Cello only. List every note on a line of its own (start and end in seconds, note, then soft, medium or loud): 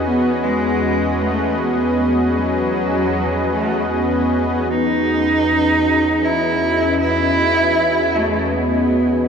0.05 0.45 B3 loud
0.44 1.22 G#3 medium
1.21 1.60 A3 medium
1.59 2.38 B3 medium
2.36 3.51 F#3 medium
3.52 3.89 A3 medium
3.92 4.72 B3 medium
4.70 6.26 D#4 loud
6.24 7.00 E4 medium
7.01 8.17 E4 loud
8.15 8.55 A3 medium
8.53 9.28 B3 medium